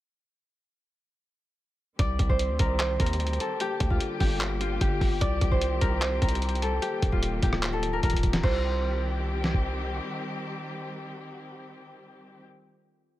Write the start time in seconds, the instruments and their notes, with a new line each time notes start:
1.99 808-style bass C2, string section D#3 G3 C4 G4, harp D5, kick, closed hi-hat
2.19 808-style bass C2, kick, closed hi-hat
2.29 harp C5, kick
2.39 closed hi-hat
2.49 808-style bass D2
2.59 808-style bass C2, harp A#4, kick, closed hi-hat
2.80 harp C5, clap, closed hi-hat
3.00 808-style bass D#2, harp A#4, kick, closed hi-hat
3.06 closed hi-hat
3.13 closed hi-hat
3.20 808-style bass D2, closed hi-hat
3.27 closed hi-hat
3.33 closed hi-hat
3.40 harp A4, closed hi-hat
3.60 string section D3 G3 A#3, harp G4, closed hi-hat
3.80 808-style bass D2, kick, closed hi-hat
3.90 harp F4, kick
4.00 closed hi-hat
4.20 808-style bass G1, harp G4, kick, open hi-hat
4.41 clap, closed hi-hat
4.61 harp F4, closed hi-hat
4.81 808-style bass G1, harp G4, kick, closed hi-hat
5.01 808-style bass G1, kick, open hi-hat
5.21 808-style bass C2, string section D#3 G3 C4, harp D5, kick, closed hi-hat
5.41 808-style bass C2, kick, closed hi-hat
5.51 harp C5, kick
5.61 closed hi-hat
5.81 808-style bass C2, harp A#4, kick, closed hi-hat
6.02 harp C5, clap, closed hi-hat
6.22 808-style bass C2, harp A#4, kick, closed hi-hat
6.29 closed hi-hat
6.35 closed hi-hat
6.42 closed hi-hat
6.49 closed hi-hat
6.55 closed hi-hat
6.62 harp A4, closed hi-hat
6.82 string section D#3 A#3, harp G4, closed hi-hat
7.02 808-style bass D#1, kick, closed hi-hat
7.12 harp F4, kick
7.23 closed hi-hat
7.43 808-style bass D1, harp G4, kick, closed hi-hat
7.53 cross-stick
7.63 clap, closed hi-hat
7.73 harp A4
7.83 closed hi-hat
7.93 harp A#4
8.03 808-style bass D#1, harp A#4, kick, closed hi-hat
8.10 kick, closed hi-hat
8.17 closed hi-hat
8.23 kick, closed hi-hat
8.33 snare, closed hi-hat
8.43 808-style bass C2, string section D#3 G3 C4 G4, harp C5, kick, crash
9.44 snare
9.54 kick